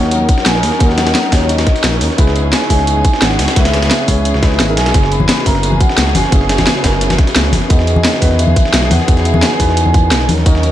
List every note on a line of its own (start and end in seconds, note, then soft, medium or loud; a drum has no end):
0.00 0.19 D#2 medium
0.00 2.16 F#3 medium
0.00 0.79 C#4 medium
0.00 4.90 C#4 medium
0.00 0.80 D#4 medium
0.00 2.16 D#4 medium
0.00 0.81 F#4 medium
0.00 0.82 A#4 medium
0.00 2.16 A#4 medium
0.00 0.79 C#5 medium
0.00 0.11 F#5 loud
0.00 snare soft
0.11 0.47 F#5 loud
0.11 closed hi-hat medium
0.20 0.28 D#2 medium
0.29 kick loud
0.29 closed hi-hat medium
0.38 snare medium
0.46 0.62 A#1 medium
0.46 0.82 G#5 loud
0.46 snare loud
0.46 closed hi-hat medium
0.55 snare medium
0.63 0.71 D#2 loud
0.63 snare medium
0.63 closed hi-hat medium
0.63 open hi-hat medium
0.72 snare soft
0.79 1.05 D#2 loud
0.79 1.29 C#4 medium
0.79 1.30 D#4 medium
0.79 1.31 F#4 medium
0.79 1.31 A#4 medium
0.79 0.97 F#5 loud
0.79 kick loud
0.79 closed hi-hat medium
0.89 snare soft
0.98 1.33 F#5 medium
0.98 snare loud
0.98 closed hi-hat medium
1.07 1.14 D#2 medium
1.07 snare loud
1.07 closed hi-hat medium
1.15 snare loud
1.15 closed hi-hat medium
1.24 snare soft
1.31 1.57 D#2 medium
1.31 2.16 C#4 medium
1.31 2.15 D#4 medium
1.31 2.17 F#4 medium
1.31 1.50 C#5 medium
1.31 2.17 C#5 medium
1.31 kick medium
1.31 snare loud
1.31 closed hi-hat medium
1.31 open hi-hat medium
1.41 snare soft
1.49 1.82 D#5 medium
1.49 snare soft
1.49 closed hi-hat medium
1.58 1.66 D#2 medium
1.58 snare loud
1.58 closed hi-hat medium
1.67 kick loud
1.67 snare medium
1.67 closed hi-hat medium
1.76 snare soft
1.76 closed hi-hat medium
1.84 1.99 A#1 medium
1.84 snare loud
1.84 closed hi-hat medium
1.93 snare medium
2.01 2.09 D#2 loud
2.01 snare soft
2.01 closed hi-hat medium
2.01 open hi-hat medium
2.10 snare soft
2.17 2.43 C#2 loud
2.17 10.25 C#3 medium
2.17 4.91 B3 medium
2.17 2.67 D#4 medium
2.17 2.68 E4 medium
2.17 4.91 G#4 medium
2.17 2.68 G#4 medium
2.17 2.69 B4 medium
2.17 kick loud
2.17 closed hi-hat medium
2.27 snare medium
2.36 closed hi-hat medium
2.45 2.52 C#2 loud
2.53 2.69 G#5 medium
2.53 snare loud
2.53 closed hi-hat medium
2.62 snare medium
2.68 2.95 C#2 medium
2.68 3.53 D#4 medium
2.68 3.54 E4 medium
2.68 3.55 G#4 medium
2.68 3.55 C#5 medium
2.68 3.23 G#5 loud
2.68 kick medium
2.68 closed hi-hat medium
2.68 open hi-hat medium
2.79 snare soft
2.87 closed hi-hat medium
2.96 3.04 C#2 medium
3.05 kick loud
3.05 closed hi-hat medium
3.13 snare medium
3.22 3.37 G#1 medium
3.22 3.57 F#5 loud
3.22 snare loud
3.22 closed hi-hat medium
3.31 snare medium
3.39 3.47 C#2 loud
3.39 snare loud
3.39 closed hi-hat medium
3.39 open hi-hat medium
3.48 snare loud
3.48 closed hi-hat medium
3.55 3.81 C#2 loud
3.55 4.05 C#4 medium
3.55 4.06 E4 medium
3.55 4.06 G#4 medium
3.55 4.07 B4 medium
3.55 4.56 E5 medium
3.55 kick loud
3.55 snare loud
3.55 closed hi-hat medium
3.55 closed hi-hat loud
3.65 snare loud
3.65 closed hi-hat medium
3.65 closed hi-hat soft
3.73 snare loud
3.73 closed hi-hat medium
3.82 3.90 C#2 medium
3.82 snare loud
3.82 closed hi-hat medium
3.91 snare loud
3.91 closed hi-hat loud
3.91 closed hi-hat medium
4.00 snare soft
4.07 4.33 C#2 loud
4.07 4.41 C#4 medium
4.07 4.41 E4 medium
4.07 4.41 G#4 medium
4.07 4.41 C#5 medium
4.07 kick medium
4.07 closed hi-hat medium
4.07 open hi-hat medium
4.25 closed hi-hat loud
4.25 closed hi-hat medium
4.34 4.61 C#2 medium
4.34 snare medium
4.42 4.66 D#4 medium
4.42 4.66 E4 medium
4.42 4.67 G#4 medium
4.42 4.67 B4 medium
4.42 kick loud
4.42 snare loud
4.42 closed hi-hat medium
4.52 snare medium
4.60 4.79 G#1 medium
4.60 snare loud
4.60 closed hi-hat loud
4.68 4.92 D#4 medium
4.68 4.92 E4 medium
4.68 4.92 G#4 medium
4.68 4.93 A#4 medium
4.77 4.93 B1 medium
4.77 5.09 G#5 loud
4.77 snare loud
4.77 closed hi-hat medium
4.77 open hi-hat medium
4.86 snare loud
4.86 closed hi-hat medium
4.93 5.19 F#1 loud
4.93 5.43 B3 medium
4.93 7.67 B3 medium
4.93 5.44 C#4 medium
4.93 5.44 E4 medium
4.93 7.67 F#4 medium
4.93 7.67 G#4 medium
4.93 5.45 G#4 medium
4.93 kick loud
4.93 closed hi-hat loud
4.93 closed hi-hat medium
5.03 snare medium
5.12 5.47 B5 loud
5.12 closed hi-hat medium
5.20 5.28 F#1 medium
5.20 high conga medium
5.29 snare loud
5.29 closed hi-hat loud
5.29 closed hi-hat medium
5.38 snare medium
5.44 5.71 F#1 medium
5.44 6.29 B3 medium
5.44 6.30 C#4 medium
5.44 6.31 E4 medium
5.44 6.31 A#4 medium
5.44 5.75 A#5 loud
5.44 kick medium
5.44 closed hi-hat medium
5.44 open hi-hat medium
5.55 snare soft
5.63 closed hi-hat loud
5.63 closed hi-hat medium
5.72 5.80 F#1 medium
5.72 5.80 G#5 medium
5.72 high conga medium
5.80 6.13 F#5 loud
5.80 kick loud
5.80 closed hi-hat medium
5.89 snare medium
5.98 6.13 C#2 medium
5.98 snare loud
5.98 closed hi-hat medium
6.07 snare medium
6.15 6.23 F#1 loud
6.15 7.14 G#5 medium
6.15 snare medium
6.15 closed hi-hat medium
6.15 open hi-hat medium
6.15 high conga medium
6.24 snare soft
6.31 6.57 F#1 medium
6.31 6.81 B3 medium
6.31 6.82 C#4 medium
6.31 6.82 E4 medium
6.31 6.83 G#4 medium
6.31 kick loud
6.31 closed hi-hat medium
6.41 snare soft
6.49 snare loud
6.49 closed hi-hat medium
6.58 6.66 F#1 medium
6.58 snare loud
6.58 closed hi-hat medium
6.58 high conga medium
6.67 snare loud
6.67 closed hi-hat medium
6.67 closed hi-hat loud
6.76 snare soft
6.82 7.09 F#1 medium
6.82 7.67 B3 medium
6.82 7.68 C#4 medium
6.82 7.68 E4 medium
6.82 7.69 A#4 medium
6.82 kick medium
6.82 snare loud
6.82 closed hi-hat medium
6.82 open hi-hat medium
6.93 snare medium
7.01 snare soft
7.01 closed hi-hat loud
7.01 closed hi-hat medium
7.10 7.18 F#1 medium
7.10 snare loud
7.10 closed hi-hat medium
7.10 high conga medium
7.18 kick loud
7.18 snare medium
7.18 closed hi-hat medium
7.27 snare soft
7.27 closed hi-hat medium
7.36 7.51 C#2 medium
7.36 snare loud
7.36 closed hi-hat medium
7.36 closed hi-hat loud
7.45 snare medium
7.53 7.61 F#1 loud
7.53 snare soft
7.53 closed hi-hat medium
7.53 open hi-hat medium
7.53 high conga medium
7.62 snare soft
7.69 7.95 E2 loud
7.69 10.72 D#3 medium
7.69 8.19 B3 medium
7.69 10.26 B3 medium
7.69 8.20 D#4 medium
7.69 8.20 F#4 medium
7.69 10.26 G#4 medium
7.69 8.21 G#4 medium
7.69 8.41 D#5 medium
7.69 kick loud
7.69 closed hi-hat medium
7.79 snare medium
7.87 closed hi-hat medium
7.96 8.04 E2 medium
7.96 high conga medium
8.05 snare loud
8.05 closed hi-hat medium
8.14 snare medium
8.20 8.47 E2 loud
8.20 9.06 D#3 medium
8.20 9.05 B3 medium
8.20 9.06 F#4 medium
8.20 9.07 B4 medium
8.20 kick medium
8.20 closed hi-hat medium
8.20 open hi-hat medium
8.31 snare soft
8.39 8.92 E5 loud
8.39 closed hi-hat medium
8.47 8.55 E2 medium
8.47 high conga medium
8.56 kick loud
8.56 closed hi-hat medium
8.65 snare medium
8.73 8.89 B1 medium
8.73 snare loud
8.73 closed hi-hat loud
8.73 closed hi-hat medium
8.83 snare medium
8.91 8.99 E2 loud
8.91 9.26 F#5 medium
8.91 snare medium
8.91 closed hi-hat medium
8.91 open hi-hat medium
8.91 high conga medium
9.00 snare soft
9.06 9.33 E2 loud
9.06 9.57 B3 medium
9.06 9.58 D#4 medium
9.06 9.58 F#4 medium
9.06 9.59 G#4 medium
9.06 kick loud
9.06 closed hi-hat medium
9.17 snare soft
9.17 closed hi-hat soft
9.25 9.43 E5 medium
9.25 closed hi-hat medium
9.34 9.42 E2 medium
9.34 high conga loud
9.42 9.76 G#5 loud
9.42 snare loud
9.42 closed hi-hat medium
9.52 snare soft
9.58 9.85 E2 medium
9.58 10.27 B3 medium
9.58 10.28 D#4 medium
9.58 10.28 F#4 medium
9.58 10.29 B4 medium
9.58 kick medium
9.58 closed hi-hat medium
9.58 open hi-hat medium
9.69 snare soft
9.77 10.25 G#5 loud
9.77 closed hi-hat medium
9.86 10.13 E2 medium
9.86 high conga medium
9.94 kick loud
9.94 closed hi-hat medium
10.11 10.30 B1 medium
10.11 snare loud
10.11 closed hi-hat medium
10.21 snare soft
10.29 10.44 D#2 medium
10.29 10.72 F#3 medium
10.29 10.72 C#4 medium
10.29 10.72 A#4 medium
10.29 closed hi-hat medium
10.29 open hi-hat medium
10.29 high conga loud
10.38 snare soft
10.44 10.71 D#2 medium
10.44 10.72 C#4 medium
10.44 10.72 D#4 medium
10.44 10.72 F#4 medium
10.44 10.72 A#4 medium
10.44 10.72 D#5 loud
10.44 kick loud
10.44 closed hi-hat medium
10.55 snare medium
10.63 closed hi-hat medium